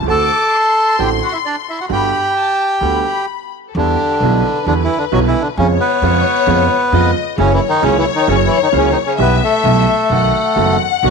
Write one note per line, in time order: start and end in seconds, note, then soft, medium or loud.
0.02 0.09 C#2 medium
0.02 0.08 C#2 medium
0.07 0.27 D2 medium
0.07 0.28 D2 medium
0.07 0.28 D3 medium
0.07 0.27 A3 medium
0.07 0.27 C4 medium
0.07 0.28 F#4 medium
0.07 0.96 A4 medium
0.07 1.03 A5 loud
0.07 0.51 D6 loud
0.54 1.90 C6 loud
0.98 1.18 A1 medium
0.98 1.19 A1 medium
0.98 1.18 A2 medium
0.98 1.18 D3 medium
0.98 1.18 A3 medium
0.98 1.18 C4 medium
0.98 1.18 F#4 medium
0.98 1.11 G4 medium
0.98 1.10 G5 medium
1.23 1.33 F#4 medium
1.23 1.33 F#5 medium
1.32 1.39 E4 medium
1.32 1.38 E5 medium
1.45 1.56 D4 medium
1.45 1.55 D5 medium
1.69 1.79 E4 medium
1.69 1.79 E5 medium
1.81 1.86 F#4 medium
1.81 1.85 F#5 medium
1.89 2.09 G1 medium
1.89 2.09 G2 medium
1.89 2.09 D3 medium
1.89 2.09 G3 medium
1.89 2.09 B3 medium
1.89 2.09 F#4 medium
1.89 3.26 G4 medium
1.89 3.26 G5 medium
1.89 2.32 B5 medium
2.37 2.82 A5 medium
2.81 3.01 D2 medium
2.81 3.02 D2 medium
2.81 3.02 D3 medium
2.81 3.02 G3 medium
2.81 3.02 B3 medium
2.81 3.02 F#4 medium
2.81 3.03 B5 medium
3.06 3.50 B5 medium
3.68 3.75 A4 medium
3.75 3.94 E2 loud
3.75 3.96 E2 medium
3.75 4.63 D3 medium
3.75 3.96 D3 medium
3.75 3.96 E3 medium
3.75 3.96 G3 medium
3.75 3.95 B3 medium
3.75 4.66 D4 medium
3.75 3.96 E4 medium
3.75 4.21 G4 medium
4.20 4.40 B1 loud
4.20 4.41 B1 medium
4.20 4.41 B2 medium
4.20 4.41 D3 medium
4.20 4.41 G3 medium
4.20 4.41 B3 medium
4.20 4.41 E4 medium
4.20 5.57 B4 medium
4.67 4.86 E2 medium
4.67 4.74 D3 medium
4.67 4.86 D3 medium
4.67 4.86 E3 medium
4.67 4.86 G3 medium
4.67 4.86 B3 medium
4.67 4.74 D4 loud
4.67 4.86 E4 medium
4.83 4.97 E3 medium
4.83 4.98 E4 medium
4.98 5.05 D3 medium
4.98 5.05 D4 medium
5.12 5.31 B1 medium
5.12 5.32 B2 medium
5.12 5.31 D3 medium
5.12 5.20 F#3 medium
5.12 5.31 G3 medium
5.12 5.32 B3 medium
5.12 5.32 E4 medium
5.12 5.19 F#4 loud
5.27 5.41 E3 medium
5.27 5.43 E4 medium
5.41 5.49 D3 medium
5.41 5.48 D4 medium
5.57 5.76 F2 loud
5.57 5.77 F2 medium
5.57 5.68 C#3 medium
5.57 5.77 C#3 medium
5.57 5.77 F3 medium
5.57 5.77 G#3 medium
5.57 5.77 B3 medium
5.57 5.67 C#4 loud
5.57 5.77 F4 medium
5.57 6.89 C#5 loud
5.80 7.11 B3 loud
5.80 7.11 B4 medium
6.02 6.21 F2 loud
6.02 6.22 F2 medium
6.02 6.22 C#3 medium
6.02 6.22 F3 medium
6.02 6.22 G#3 medium
6.02 6.22 B3 medium
6.02 6.22 F4 medium
6.47 6.66 F2 loud
6.47 6.66 F2 medium
6.47 6.66 C#3 medium
6.47 6.66 F3 medium
6.47 6.66 G#3 medium
6.47 6.66 B3 medium
6.47 6.66 F4 medium
6.92 7.11 F2 loud
6.92 7.12 F2 medium
6.92 7.12 C#3 medium
6.92 7.12 F3 medium
6.92 7.12 G#3 medium
6.92 7.12 B3 medium
6.92 7.12 F4 medium
6.92 7.35 D#5 medium
7.37 7.57 F#1 loud
7.37 7.57 F#2 medium
7.37 7.51 C#3 medium
7.37 7.57 C#3 medium
7.37 7.57 F#3 medium
7.37 7.57 A#3 medium
7.37 7.53 C#4 loud
7.37 7.57 E4 medium
7.37 9.15 C#5 loud
7.53 7.59 E3 medium
7.53 7.61 E4 loud
7.68 7.82 D#3 medium
7.68 7.84 D#4 loud
7.81 8.02 C#2 loud
7.81 7.96 C#3 medium
7.81 8.02 C#3 loud
7.81 8.02 F#3 medium
7.81 8.02 A#3 medium
7.81 7.97 C#4 loud
7.81 8.02 E4 medium
7.97 8.04 E3 medium
7.97 8.05 E4 loud
8.15 8.28 D#3 medium
8.15 8.28 D#4 loud
8.27 8.47 F#1 loud
8.27 8.47 F#2 medium
8.27 8.47 C#3 medium
8.27 8.36 C#3 medium
8.27 8.47 F#3 medium
8.27 8.47 A#3 medium
8.27 8.37 C#4 loud
8.27 8.47 E4 medium
8.46 8.58 E3 medium
8.46 8.59 E4 loud
8.62 8.68 D#3 medium
8.62 8.69 D#4 loud
8.72 8.92 C#2 medium
8.72 8.92 C#2 loud
8.72 8.92 C#3 medium
8.72 8.92 F#3 medium
8.72 8.92 A#3 medium
8.72 8.92 E4 medium
8.77 8.89 C#3 medium
8.77 8.91 C#4 loud
8.91 8.97 D#3 medium
8.91 8.98 D#4 medium
9.06 9.19 C#3 medium
9.06 9.20 C#4 medium
9.18 9.38 B1 loud
9.18 9.38 B1 medium
9.18 9.38 B2 medium
9.18 9.38 E3 medium
9.18 9.38 G3 medium
9.18 9.38 B3 medium
9.18 9.43 B3 loud
9.18 9.38 G4 medium
9.18 9.41 B4 medium
9.18 10.10 E5 loud
9.43 10.77 A3 medium
9.43 10.77 A4 medium
9.64 9.83 B1 loud
9.64 9.84 B1 medium
9.64 9.84 B2 medium
9.64 9.84 E3 medium
9.64 9.84 G3 medium
9.64 9.84 B3 medium
9.64 9.84 G4 medium
10.10 10.29 B1 loud
10.10 10.30 B1 medium
10.10 10.30 B2 medium
10.10 10.30 D#3 medium
10.10 10.30 A3 medium
10.10 10.30 B3 medium
10.10 10.30 F#4 medium
10.10 11.10 F#5 loud
10.56 10.76 F#1 medium
10.56 10.76 F#2 medium
10.56 10.76 D#3 medium
10.56 10.76 A3 medium
10.56 10.76 B3 medium
10.56 10.76 F#4 medium
11.03 11.10 B1 loud
11.03 11.10 B1 medium
11.03 11.10 B2 medium
11.03 11.10 D#3 medium
11.03 11.10 F#3 medium
11.03 11.10 A3 medium
11.03 11.10 B3 medium
11.03 11.10 F#4 medium